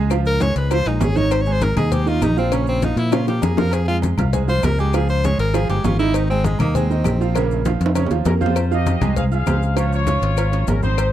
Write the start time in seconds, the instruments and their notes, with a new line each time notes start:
Already playing: fingered electric bass C#2
0.10 grand piano F3 F4 F5, cowbell, high conga, low agogo, claves, maracas
0.26 tenor saxophone A#4, high conga, maracas
0.40 grand piano G#3 G#4 G#5, tenor saxophone C#5, cowbell, high conga, low timbale, low agogo, maracas
0.56 fingered electric bass C#2, tenor saxophone B4, cowbell, maracas
0.71 grand piano F3 F4 F5, tenor saxophone C5, cowbell, high conga, low agogo, claves, maracas
0.86 fingered electric bass A#1, grand piano G#3 G#4 G#5, tenor saxophone D#4, cowbell, high conga, maracas
1.01 fingered electric bass G#1, grand piano C#4 C#5 C#6, tenor saxophone G#4, cowbell, high conga, low timbale, low agogo, maracas
1.16 grand piano D#3 D#4 D#5, tenor saxophone C#5, high conga, maracas
1.31 tenor saxophone C5, cowbell, low agogo, claves, maracas
1.42 tenor saxophone C#5
1.46 grand piano G#3 G#4 G#5, high conga, maracas
1.53 tenor saxophone C5
1.61 tenor saxophone A#4, cowbell, high conga, low timbale, low agogo, maracas
1.76 fingered electric bass D#2, grand piano D#4 D#5 D#6, tenor saxophone G#4, cowbell, high conga, low conga, low agogo, claves, maracas
1.91 grand piano G#3 G#4 G#5, tenor saxophone G4, cowbell, high conga, low conga, maracas
2.06 grand piano D#3 D#4 D#5, tenor saxophone F4, maracas
2.22 fingered electric bass A#1, tenor saxophone D#4, cowbell, high conga, low timbale, low agogo, claves, maracas
2.37 grand piano F3 F4 F5, tenor saxophone C4, high conga, maracas
2.52 grand piano C#3 C#4 C#5, tenor saxophone C#4, cowbell, high conga, low agogo, claves, maracas
2.67 tenor saxophone C4, high conga, maracas
2.82 grand piano F3 F4 F5, tenor saxophone D#4, cowbell, high conga, low timbale, low agogo, maracas
2.96 fingered electric bass A#2, tenor saxophone E4, cowbell, high conga, maracas
3.12 grand piano C#3 C#4 C#5, tenor saxophone F4, cowbell, high bongo, high conga, high timbale, low agogo, claves, maracas
3.27 grand piano F3 F4 F5, tenor saxophone G4, cowbell, low bongo, high conga, maracas
3.42 fingered electric bass F2, grand piano A#3 A#4 A#5, tenor saxophone G#4, cowbell, low bongo, high conga, low timbale, low agogo, maracas
3.57 grand piano F3 F4 F5, tenor saxophone A#4, low bongo, high conga, low timbale, maracas
3.71 tenor saxophone G#4, cowbell, high conga, low agogo, claves, maracas
3.88 grand piano G#3 G#4 G#5, tenor saxophone F4, high conga, maracas
4.02 cowbell, high conga, low timbale, low agogo, maracas
4.17 fingered electric bass C2, grand piano F4 F5 F6, cowbell, high conga, low conga, low agogo, claves, maracas
4.33 grand piano G#3 G#4 G#5, cowbell, high conga, low conga, maracas
4.48 grand piano F3 F4 F5, tenor saxophone C5, high conga, maracas
4.63 fingered electric bass C#2, tenor saxophone A#4, cowbell, high conga, low timbale, low agogo, claves, maracas
4.78 grand piano G#3 G#4 G#5, tenor saxophone G4, maracas
4.93 grand piano F3 F4 F5, tenor saxophone G#4, cowbell, high conga, low agogo, claves, maracas
5.09 tenor saxophone C5, high conga, maracas
5.24 grand piano G#3 G#4 G#5, tenor saxophone C#5, cowbell, high conga, low timbale, low agogo, maracas
5.38 fingered electric bass G#1, tenor saxophone A#4, cowbell, maracas
5.54 grand piano F3 F4 F5, tenor saxophone G#4, cowbell, high conga, low agogo, claves, maracas
5.69 fingered electric bass G1, grand piano G#3 G#4 G#5, tenor saxophone G4, cowbell, high conga, maracas
5.84 fingered electric bass G#1, grand piano C#4 C#5 C#6, tenor saxophone F4, cowbell, high conga, low timbale, low agogo, maracas
5.99 grand piano D#3 D#4 D#5, tenor saxophone E4, maracas
6.14 tenor saxophone D#4, cowbell, high conga, low agogo, claves, maracas
6.30 grand piano G#3 G#4 G#5, tenor saxophone C4, high conga, maracas
6.44 tenor saxophone G#3, cowbell, high conga, low timbale, low agogo, maracas
6.59 fingered electric bass D#2, tenor saxophone A#3, grand piano D#4 D#5 D#6, cowbell, high conga, low conga, low agogo, claves, maracas
6.75 grand piano G#3 G#4 G#5, tenor saxophone C4, cowbell, high conga, low conga, maracas
6.90 grand piano D#3 D#4 D#5, maracas
7.04 fingered electric bass A#1, cowbell, high conga, low timbale, low agogo, claves, maracas
7.20 grand piano F3 F4 F5, high conga, maracas
7.35 grand piano C#3 A#3 A#4, cowbell, high conga, low agogo, claves, maracas
7.51 high conga, maracas
7.65 grand piano F3 F4 F5, cowbell, high conga, high timbale, low agogo, maracas
7.81 fingered electric bass F2, cowbell, high conga, maracas
7.86 high timbale
7.95 grand piano C#3 C#4 C#5, cowbell, high conga, high timbale, low agogo, claves, maracas
8.07 low timbale
8.11 fingered electric bass D#2, grand piano F3 F4 F5, cowbell, high conga, maracas
8.25 fingered electric bass F2, grand piano A#3 A#4 A#5, trumpet section C#4 A#4, cowbell, high conga, low timbale, low agogo, maracas
8.41 grand piano F3 F4 F5, trumpet section F4 C5, high conga, maracas
8.46 low timbale
8.56 cowbell, high conga, low agogo, claves, maracas
8.71 grand piano F3 F4 F5, trumpet section G4 D#5, high conga, maracas
8.86 cowbell, high conga, low timbale, low agogo, maracas
9.01 fingered electric bass C2, grand piano G#3 G#4 G#5, cowbell, high conga, low conga, low agogo, claves, maracas
9.16 trumpet section G#4 F5, cowbell, high conga, low conga, maracas
9.31 grand piano F4 F5 F6, trumpet section G#4 F5, maracas
9.46 fingered electric bass C#2, grand piano C4 C5 C6, cowbell, high conga, low timbale, low agogo, claves, maracas
9.62 high conga, maracas
9.76 grand piano F3 F4 F5, trumpet section F4 C#5, cowbell, low agogo, claves, maracas
9.92 trumpet section F4 C#5, high conga, maracas
10.07 grand piano C#4 C#5 C#6, cowbell, high conga, low timbale, low agogo, maracas
10.22 fingered electric bass G#1, cowbell, high conga, maracas
10.37 grand piano F4 F5 F6, cowbell, high conga, low agogo, claves, maracas
10.52 grand piano C#4 C#5 C#6, cowbell, high conga, maracas
10.67 fingered electric bass G#1, trumpet section C#4 A#4, cowbell, high conga, low timbale, low agogo, maracas
10.83 grand piano C4 C5 C6, trumpet section D#4 C5, high conga, maracas
10.98 cowbell, low agogo, claves, maracas